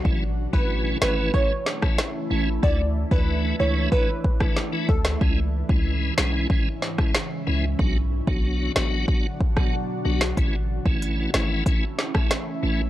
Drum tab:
HH |----------------|----------------|----------------|----------------|
SD |------o---oro---|-----------ro--o|------o---oro---|------o----r---o|
BD |o--o----o--o----|o--o----o-oo--o-|o--o----o--o----|o--o----o-oo----|

HH |x---x---x---x---|
SD |------o---oro---|
BD |o--o----o--o----|